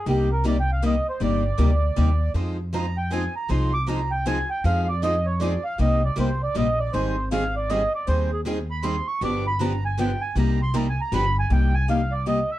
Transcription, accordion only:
X:1
M:3/4
L:1/8
Q:"Swing" 1/4=157
K:Cm
V:1 name="Accordion"
G B (3d g f e c | d6 | z2 b g a b | c' d' b g a g |
f d e _d =d f | e d c d e d | c2 f d e d | c A z =b c' _d' |
d' =b _b a g a | b c' (3b a b =b a | g a f d e =e |]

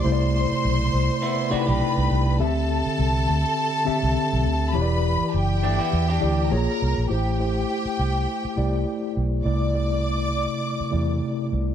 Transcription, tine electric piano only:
X:1
M:4/4
L:1/8
Q:"Swing 16ths" 1/4=102
K:Am
V:1 name="Tine electric piano"
[C,A,Ecd]4 z [C,A,^DE=d]3 | [D,CGe]4 z [D,CGe]3 | [E,EG^cd]4 z [E,EGd] [_B,F_A_d]2 | [A,EGc] [A,EGc]4 [A,EGd]3 |
[C,A,Ed] [C,A,Ed]4 [C,A,Ed]3 |]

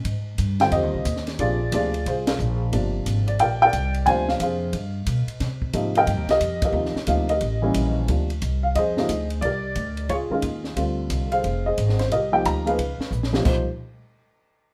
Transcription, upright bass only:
X:1
M:4/4
L:1/8
Q:"Swing" 1/4=179
K:Cm
V:1 name="Upright bass" clef=bass
A,,2 G,,2 (3F,, E,, C,, E,,2 | B,,,2 D,,2 C,,2 B,,,2 | G,,,2 A,,,2 B,,,2 C,,2 | D,,2 F,,2 G,,2 =B,, z |
C,2 A,,2 (3G,, E,, C,, F,,2 | E,, z D,,2 =A,,,2 B,,,2 | D,,2 C,,2 F,,2 D,,2 | C,,2 D,,2 _D,, z E,,2 |
D,,2 C,,2 F,,,2 A,,,2 | C,,2 D,,2 _D,, z B,,,2 | C,, z6 z |]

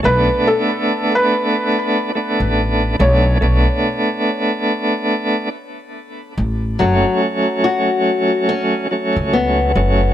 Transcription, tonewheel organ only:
X:1
M:4/4
L:1/8
Q:"Swing 16ths" 1/4=71
K:Bdor
V:1 name="Tonewheel organ"
[A,B,D]4- [A,B,D] [A,B,D]2 [A,B,D] | [A,B,D]4- [A,B,D] z3 | [F,A,C]4- [F,A,C] [F,A,C]2 [F,A,C] |]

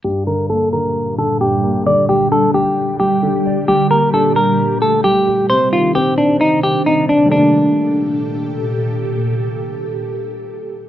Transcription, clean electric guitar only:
X:1
M:4/4
L:1/8
Q:1/4=132
K:Gm
V:1 name="Clean electric guitar"
G B A B2 A G2 | d G A G2 G3 | G B A B2 A G2 | c F G D E G E D |
D6 z2 | z8 |]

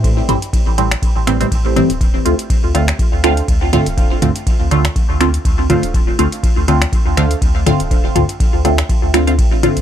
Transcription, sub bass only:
X:1
M:4/4
L:1/16
Q:"Swing 16ths" 1/4=122
K:Dm
V:1 name="Sub bass" clef=bass
A,, z A,,, z2 A,,,2 z2 A,,,2 z A,,,2 z D,,,- | D,,, z D,, z2 D,,2 z2 D,,2 z D,,2 z D,,,- | D,,, z D,, z2 D,,2 z2 D,,2 z D,,2 z D,,,- | D,,, z D,, z2 D,,2 z2 D,,2 z D,,2 z D,,,- |
D,,, z D,, z2 D,,2 z2 D,,3 A,,,2 z A,,, |]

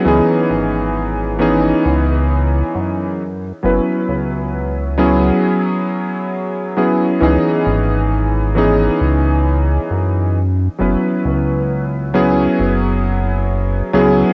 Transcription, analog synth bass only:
X:1
M:4/4
L:1/8
Q:"Swing 16ths" 1/4=67
K:F#dor
V:1 name="Analog synth bass" clef=bass
C,, G,,,3 C,,2 F,,2 | F,,, C,,3 z4 | C,, G,,,3 C,,2 F,,2 | F,,, C,,3 F,,,3 C,, |]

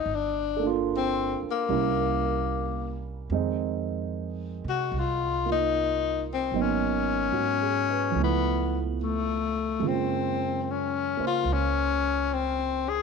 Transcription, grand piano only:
X:1
M:4/4
L:1/8
Q:"Swing" 1/4=74
K:Fphr
V:1 name="Grand piano"
z8 | z8 | z2 (3G A _c z4 | z8 |]
V:2 name="Grand piano"
z [B,=DF=A]3 [=G,B,_D=E]4 | [E,A,CE]4- [E,A,CE] [B,EF]3 | [G,B,_CE]4 [F,=A,C=E]4 | [D,A,B,F]3 [B,c]4- [B,c] |]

